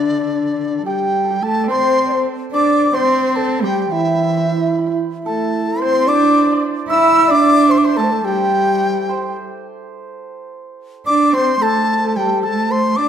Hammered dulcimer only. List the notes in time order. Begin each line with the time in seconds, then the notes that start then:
Already playing: D4 E4 G4
0.79 A4
0.86 G4
1.24 A4
1.30 G4
1.42 A4
1.64 D5
1.70 C5
2.54 D5
2.87 D5
2.94 C5
3.64 G4
3.92 E4
3.99 E4
4.07 E4
4.15 E4
4.22 E4
4.30 E4
4.37 E4
4.45 E4
4.52 E4
4.57 E4
4.66 E4
4.73 E4
4.78 E4
4.87 E4
5.26 A4
5.82 C5
6.09 D5
6.15 D5
6.23 D5
6.30 D5
6.38 D5
6.45 D5
6.52 D5
6.90 E5
7.23 E5
7.30 D5
7.85 C5
7.99 A4
8.28 G4
9.09 C5
11.07 D5
11.34 C5
11.61 A4
11.68 A4
11.77 A4
11.84 A4
11.93 A4
11.97 A4
12.06 A4
12.11 A4
12.19 A4
12.27 A4
12.43 A4
12.98 D5